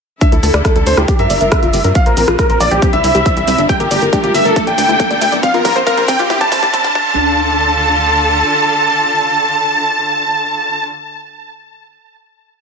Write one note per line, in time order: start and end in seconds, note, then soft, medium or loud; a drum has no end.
0.21 1.08 D3 medium
0.21 0.28 D4 loud
0.21 1.94 D4 medium
0.21 1.08 E4 medium
0.21 1.07 A4 medium
0.21 0.31 E5 medium
0.21 kick loud
0.21 closed hi-hat medium
0.21 riser medium
0.21 shaker soft
0.32 0.41 D2 medium
0.32 0.36 E4 loud
0.32 0.42 A4 medium
0.32 0.41 A4 medium
0.32 closed hi-hat medium
0.32 shaker soft
0.43 0.51 D2 loud
0.43 0.53 A4 medium
0.43 0.47 A4 loud
0.43 0.53 A4 medium
0.43 open hi-hat loud
0.43 shaker medium
0.54 0.62 D2 medium
0.54 0.61 D5 loud
0.54 cross-stick medium
0.54 closed hi-hat medium
0.54 shaker soft
0.65 0.74 A4 medium
0.65 0.72 E5 medium
0.65 kick loud
0.65 cross-stick medium
0.65 closed hi-hat medium
0.65 shaker soft
0.76 0.84 D2 medium
0.76 0.85 A4 medium
0.76 0.80 D5 medium
0.76 closed hi-hat medium
0.76 shaker soft
0.87 0.95 D2 loud
0.87 0.94 D4 loud
0.87 0.96 C5 medium
0.87 open hi-hat medium
0.87 shaker medium
0.97 1.06 D2 medium
0.97 1.02 E4 loud
0.97 1.07 G4 medium
0.97 cross-stick medium
0.97 closed hi-hat medium
0.97 shaker soft
1.08 1.94 G3 medium
1.08 2.81 F4 medium
1.08 1.18 G4 medium
1.08 1.13 G4 loud
1.08 1.18 G4 medium
1.08 1.94 A#4 medium
1.08 kick loud
1.08 closed hi-hat medium
1.08 shaker soft
1.19 1.28 G2 medium
1.19 1.26 A#4 loud
1.19 1.87 E5 medium
1.19 1.87 E5 loud
1.19 closed hi-hat medium
1.19 shaker soft
1.30 1.38 G1 loud
1.30 1.37 D5 medium
1.30 open hi-hat loud
1.30 shaker medium
1.41 1.49 G1 medium
1.41 1.45 A#4 medium
1.41 closed hi-hat medium
1.41 shaker soft
1.52 1.59 D4 loud
1.52 kick loud
1.52 cross-stick medium
1.52 closed hi-hat medium
1.52 shaker soft
1.63 1.71 G1 medium
1.63 1.67 F4 loud
1.63 closed hi-hat medium
1.63 shaker soft
1.73 1.82 G1 loud
1.73 1.78 G4 loud
1.73 open hi-hat medium
1.73 shaker medium
1.84 1.93 G2 medium
1.84 1.91 A#4 loud
1.84 closed hi-hat medium
1.84 shaker soft
1.95 2.81 A#3 medium
1.95 3.67 C4 medium
1.95 2.05 F5 medium
1.95 2.02 F5 medium
1.95 2.05 F5 loud
1.95 kick loud
1.95 closed hi-hat medium
1.95 shaker soft
2.06 2.14 A#1 medium
2.06 2.15 A#4 medium
2.06 2.16 A#4 medium
2.06 2.10 C5 medium
2.06 closed hi-hat medium
2.06 shaker soft
2.17 2.25 A#1 loud
2.17 2.24 C4 loud
2.17 2.26 A#4 medium
2.17 open hi-hat loud
2.17 shaker medium
2.28 2.36 A#1 medium
2.28 2.32 F4 loud
2.28 cross-stick medium
2.28 closed hi-hat medium
2.28 shaker soft
2.39 2.48 A#4 medium
2.39 2.43 A#4 loud
2.39 2.48 A#4 medium
2.39 kick loud
2.39 cross-stick medium
2.39 closed hi-hat medium
2.39 shaker soft
2.50 2.58 A#1 medium
2.50 2.59 A#4 medium
2.50 2.57 C5 loud
2.50 closed hi-hat medium
2.50 shaker soft
2.60 2.69 A#1 loud
2.60 2.70 D5 medium
2.60 2.67 F5 medium
2.60 open hi-hat medium
2.60 shaker medium
2.71 2.80 A#1 medium
2.71 2.81 G4 medium
2.71 2.76 C5 medium
2.71 closed hi-hat medium
2.71 shaker soft
2.82 3.68 C3 medium
2.82 2.89 C4 loud
2.82 3.68 D4 medium
2.82 3.68 E4 medium
2.82 2.92 G4 medium
2.82 kick loud
2.82 closed hi-hat medium
2.82 shaker soft
2.93 3.01 C2 medium
2.93 2.97 D4 loud
2.93 3.60 E5 medium
2.93 3.61 E5 loud
2.93 closed hi-hat medium
2.93 shaker soft
3.04 3.12 C2 loud
3.04 3.08 E4 loud
3.04 open hi-hat loud
3.04 shaker medium
3.15 3.23 C2 medium
3.15 3.22 G4 loud
3.15 closed hi-hat medium
3.15 shaker soft
3.26 3.33 C5 medium
3.26 kick loud
3.26 closed hi-hat medium
3.26 shaker soft
3.37 3.45 C2 medium
3.37 3.41 G4 medium
3.37 closed hi-hat medium
3.37 shaker soft
3.48 3.56 C2 loud
3.48 3.54 C4 loud
3.48 open hi-hat loud
3.48 shaker medium
3.58 3.67 G1 medium
3.58 3.63 D4 loud
3.58 closed hi-hat medium
3.58 shaker soft
3.69 4.55 G3 medium
3.69 5.41 D4 medium
3.69 4.55 F4 medium
3.69 3.73 G4 loud
3.69 4.55 A#4 medium
3.69 3.79 G5 loud
3.69 kick loud
3.69 closed hi-hat medium
3.69 shaker soft
3.80 3.88 G1 medium
3.80 3.90 G4 medium
3.80 3.87 A#4 loud
3.80 closed hi-hat soft
3.80 shaker soft
3.91 3.99 G1 loud
3.91 4.00 G4 medium
3.91 3.98 D5 medium
3.91 open hi-hat loud
3.91 shaker medium
4.02 4.10 G1 medium
4.02 4.06 A#4 medium
4.02 closed hi-hat soft
4.02 shaker soft
4.13 4.20 D4 loud
4.13 4.22 G4 medium
4.13 kick loud
4.13 closed hi-hat medium
4.13 shaker soft
4.23 4.32 G1 medium
4.23 4.28 F4 loud
4.23 4.33 G4 medium
4.23 closed hi-hat medium
4.23 shaker soft
4.34 4.43 G1 loud
4.34 4.39 G4 loud
4.34 4.44 E5 medium
4.34 4.44 E5 loud
4.34 open hi-hat medium
4.34 shaker medium
4.45 4.54 G1 medium
4.45 4.55 A4 medium
4.45 4.52 A#4 loud
4.45 closed hi-hat medium
4.45 shaker soft
4.56 5.42 D3 medium
4.56 5.42 E4 medium
4.56 5.42 A4 medium
4.56 4.66 A4 medium
4.56 4.63 E5 medium
4.56 kick loud
4.56 closed hi-hat medium
4.56 shaker soft
4.67 4.75 D1 medium
4.67 4.71 D5 medium
4.67 5.34 G5 loud
4.67 5.35 G5 loud
4.67 closed hi-hat medium
4.67 shaker soft
4.78 4.86 D2 loud
4.78 4.85 D4 loud
4.78 open hi-hat loud
4.78 shaker medium
4.89 4.97 D2 medium
4.89 4.93 E4 loud
4.89 closed hi-hat soft
4.89 shaker soft
5.00 5.04 A4 loud
5.00 kick loud
5.00 closed hi-hat medium
5.00 shaker soft
5.10 5.19 D2 medium
5.10 5.17 D5 loud
5.10 closed hi-hat medium
5.10 shaker soft
5.21 5.30 D2 loud
5.21 5.28 E5 medium
5.21 open hi-hat loud
5.21 shaker medium
5.32 5.41 D1 medium
5.32 5.36 D5 medium
5.32 closed hi-hat medium
5.32 shaker soft
5.43 6.29 A#3 medium
5.43 5.50 C4 loud
5.43 6.94 C4 medium
5.43 6.29 F4 medium
5.43 5.53 F5 loud
5.43 kick loud
5.43 closed hi-hat medium
5.43 shaker soft
5.54 5.62 A#1 medium
5.54 5.58 F4 loud
5.54 5.63 A#4 medium
5.54 5.64 A#4 medium
5.54 closed hi-hat medium
5.54 shaker soft
5.65 5.73 A#1 loud
5.65 5.74 A#4 medium
5.65 5.69 A#4 loud
5.65 5.74 A#4 medium
5.65 kick loud
5.65 open hi-hat loud
5.65 shaker medium
5.76 5.84 A#1 medium
5.76 5.83 C5 loud
5.76 closed hi-hat soft
5.76 shaker soft
5.87 5.96 A#4 medium
5.87 5.94 F5 medium
5.87 kick loud
5.87 closed hi-hat medium
5.87 shaker soft
5.97 6.06 A#1 medium
5.97 6.07 A#4 medium
5.97 6.02 C5 medium
5.97 closed hi-hat soft
5.97 shaker soft
6.08 6.17 A#1 loud
6.08 6.15 C4 loud
6.08 6.18 G5 medium
6.08 kick loud
6.08 open hi-hat medium
6.08 shaker medium
6.19 6.28 A#1 medium
6.19 6.23 F4 loud
6.19 6.28 G4 medium
6.19 6.29 G4 medium
6.19 closed hi-hat medium
6.19 shaker soft
6.30 6.95 C3 medium
6.30 6.94 D4 medium
6.30 6.95 E4 medium
6.30 6.34 E4 loud
6.30 6.39 G4 medium
6.30 6.40 G4 medium
6.30 kick loud
6.30 closed hi-hat medium
6.30 shaker soft
6.41 6.49 C2 medium
6.41 6.48 G4 loud
6.41 6.94 A5 loud
6.41 kick loud
6.41 closed hi-hat medium
6.41 shaker soft
6.52 6.60 G1 loud
6.52 6.59 C5 medium
6.52 kick loud
6.52 open hi-hat loud
6.52 shaker medium
6.63 6.71 C2 medium
6.63 6.67 G4 medium
6.63 kick medium
6.63 closed hi-hat medium
6.63 shaker soft
6.73 6.80 C4 loud
6.73 kick loud
6.73 closed hi-hat medium
6.73 shaker soft
6.84 6.93 G1 medium
6.84 6.89 D4 loud
6.84 kick loud
6.84 closed hi-hat medium
6.84 shaker soft
6.95 8.44 D2 loud
6.95 10.85 D3 medium
6.95 7.36 D4 medium
6.95 10.85 D4 medium
6.95 10.85 F4 medium
6.95 10.85 A4 loud
6.95 10.84 A5 loud
6.95 10.84 A5 medium
6.95 kick loud